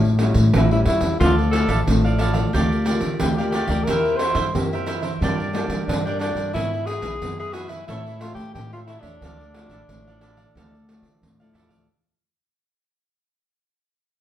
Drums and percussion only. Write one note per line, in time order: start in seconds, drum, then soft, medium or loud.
0.05 pandeiro soft
0.19 pandeiro medium
0.34 pandeiro medium
0.53 pandeiro medium
0.71 pandeiro soft
0.86 pandeiro medium
1.01 pandeiro medium
1.20 pandeiro medium
1.39 pandeiro soft
1.53 pandeiro medium
1.69 pandeiro medium
1.87 pandeiro medium
2.05 pandeiro soft
2.19 pandeiro medium
2.34 pandeiro medium
2.54 pandeiro medium
2.72 pandeiro soft
2.86 pandeiro medium
3.01 pandeiro medium
3.20 pandeiro medium
3.38 pandeiro soft
3.52 pandeiro medium
3.67 pandeiro medium
3.87 pandeiro medium
4.05 pandeiro soft
4.19 pandeiro medium
4.35 pandeiro medium
4.55 pandeiro medium
4.73 pandeiro soft
4.87 pandeiro medium
5.03 pandeiro medium
5.22 pandeiro medium
5.40 pandeiro soft
5.55 pandeiro medium
5.70 pandeiro medium
5.89 pandeiro medium
6.07 pandeiro soft
6.21 pandeiro medium
6.37 pandeiro soft
6.56 pandeiro medium
6.74 pandeiro soft
6.87 pandeiro medium
7.02 pandeiro medium
7.22 pandeiro medium
7.40 pandeiro soft
7.54 pandeiro medium
7.69 pandeiro medium
7.88 pandeiro medium
8.06 pandeiro soft
8.21 pandeiro medium
8.36 pandeiro soft
8.55 pandeiro medium
8.73 pandeiro soft
8.88 pandeiro medium
9.03 pandeiro medium
9.22 pandeiro medium
9.40 pandeiro soft
9.54 pandeiro medium
9.69 pandeiro medium
9.89 pandeiro medium
10.07 pandeiro soft
10.21 pandeiro medium
10.37 pandeiro soft
10.57 pandeiro medium
10.75 pandeiro soft
10.89 pandeiro medium
11.03 pandeiro medium
11.23 pandeiro medium
11.41 pandeiro soft
11.55 pandeiro medium
11.70 pandeiro medium